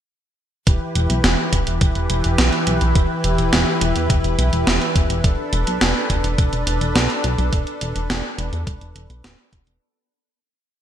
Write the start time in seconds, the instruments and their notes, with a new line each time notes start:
0.67 analog synth bass E1, supersaw synth E3 E4 G4 B4, kick, closed hi-hat
0.95 analog synth bass E1, closed hi-hat
1.10 analog synth bass B1, closed hi-hat
1.24 analog synth bass E1, snare, closed hi-hat
1.53 analog synth bass E1, kick, closed hi-hat
1.67 analog synth bass E1, closed hi-hat
1.81 analog synth bass E1, kick, closed hi-hat
1.95 analog synth bass E1, closed hi-hat
2.10 analog synth bass E1, closed hi-hat
2.24 analog synth bass E1, closed hi-hat
2.38 analog synth bass B1, snare, closed hi-hat
2.53 closed hi-hat
2.67 analog synth bass B1, closed hi-hat
2.81 analog synth bass B1, closed hi-hat
2.95 analog synth bass E1, kick, closed hi-hat
3.24 analog synth bass E1, closed hi-hat
3.38 analog synth bass E1, closed hi-hat
3.53 analog synth bass E1, snare, closed hi-hat
3.81 analog synth bass E1, closed hi-hat
3.96 analog synth bass E2, closed hi-hat
4.10 analog synth bass E1, kick, closed hi-hat
4.24 analog synth bass E1, closed hi-hat
4.39 analog synth bass B1, closed hi-hat
4.53 analog synth bass E1, closed hi-hat
4.67 analog synth bass E1, snare, closed hi-hat
4.82 closed hi-hat
4.96 analog synth bass E1, kick, closed hi-hat
5.10 analog synth bass E1, closed hi-hat
5.24 analog synth bass E1, supersaw synth D4 A4, kick, closed hi-hat
5.53 analog synth bass E1, closed hi-hat
5.67 analog synth bass B1, closed hi-hat
5.81 analog synth bass E1, snare, closed hi-hat
6.10 analog synth bass E1, kick, closed hi-hat
6.24 analog synth bass E1, closed hi-hat
6.38 analog synth bass E1, kick, closed hi-hat
6.53 analog synth bass E1, closed hi-hat
6.67 analog synth bass E1, closed hi-hat
6.81 analog synth bass E1, closed hi-hat
6.95 analog synth bass B1, snare, closed hi-hat
7.10 closed hi-hat
7.24 analog synth bass B1, closed hi-hat
7.38 analog synth bass B1, closed hi-hat
7.53 analog synth bass E1, kick, closed hi-hat
7.67 closed hi-hat
7.81 analog synth bass E1, closed hi-hat
7.96 analog synth bass E1, closed hi-hat
8.10 analog synth bass E1, snare, closed hi-hat
8.38 analog synth bass E1, closed hi-hat
8.53 analog synth bass E2, closed hi-hat
8.67 analog synth bass E1, kick, closed hi-hat
8.81 analog synth bass E1, closed hi-hat
8.95 analog synth bass E1, closed hi-hat
9.10 analog synth bass B1, closed hi-hat
9.24 analog synth bass D1, snare, closed hi-hat
9.39 closed hi-hat
9.53 analog synth bass E1, kick, closed hi-hat
9.67 analog synth bass E1, closed hi-hat